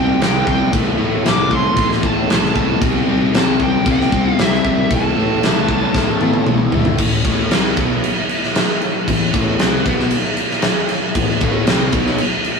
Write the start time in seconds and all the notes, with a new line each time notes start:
Already playing: C2 C3 G3 C4 G5
0.20 C2 C3 G3 C4, snare, crash
0.47 C2 C3 G3 C4 G5, kick
0.72 C2 A2 E3 A3, kick, crash
0.97 A2 E3 A3
1.23 C2 A2 E3 A3, snare, crash
1.29 D6
1.50 A2 E3 A3 C6, kick
1.76 A1 A2 E3 A3 C6, kick, crash
1.91 snare
2.03 A2 E3 A3 A5, kick
2.29 C2 A2 E3 A3, snare, crash
2.44 snare
2.54 C2 A2 E3 A3 A5, kick
2.81 C2 C3 G3 C4, kick, crash
3.07 C2 C3 G3 C4
3.33 C2 C3 G3 C4 A5, snare, crash
3.60 C3 G3 C4 G5, kick
3.85 C2 C3 G3 C4, kick, crash
3.92 G5
4.00 snare
4.12 C2 C3 G3 C4, kick
4.37 C2 C3 G3 C4 E5, snare, crash
4.53 snare
4.64 C2 C3 G3 C4, kick
4.90 C2 A2 E3 A3, kick, crash
4.94 A5
5.16 A2 E3 A3
5.43 C2 A2 E3 A3, snare, crash
5.69 A2 E3 A3, kick
5.94 A1 A2 E3 A3, kick, snare
6.21 A2 E3 A3, high tom
6.33 high tom
6.46 C2 A2 E3 A3, mid tom
6.72 G1 A2 E3 A3, floor tom
6.85 floor tom
6.98 A1 A2 E3, kick, crash
7.25 A1 A2 E3 A3, kick, crash
7.50 C2 C3 G3 C4, snare, crash
7.77 B1 B2 F#3 B3, kick, crash
8.04 crash
8.29 crash
8.43 snare
8.55 snare, crash
8.81 crash
9.07 A1 A2 E3, kick, crash
9.34 A1 A2 E3 A3, kick, crash
9.59 C2 C3 G3 C4, snare, crash
9.86 B1 B2 F#3 B3, kick, crash
9.99 snare
10.11 crash
10.37 crash
10.51 snare
10.62 snare, crash
10.89 crash
11.15 A1 A2 E3, kick, crash
11.41 A1 A2 E3 A3, kick, crash
11.66 C2 C3 G3 C4, snare, crash
11.92 B1 B2 F#3 B3, kick, crash
12.06 snare
12.18 crash
12.44 crash